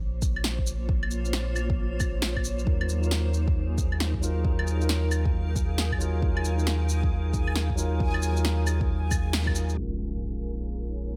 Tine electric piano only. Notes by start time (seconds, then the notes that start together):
2.65 F#3 D#4 F4
2.69 A#4
2.99 F#3 D#4
3.04 F4 A#4
4.20 F#3 D#4 F4 A#4
4.43 F#3 D#4 F4
4.47 A#4
4.77 F#3 D#4
4.82 F4 A#4
5.98 F#3 D#4 F4 A#4
6.20 F#3 D#4 F4 A#4
6.55 F#3 D#4
6.60 F4 A#4
7.76 F#3 D#4 F4 A#4
7.98 F#3 D#4 F4 A#4
8.32 F#3 D#4
8.38 F4 A#4
9.45 F#3 D#4 F4
9.49 A#4
9.73 G#3 C#4
9.79 F4 A#4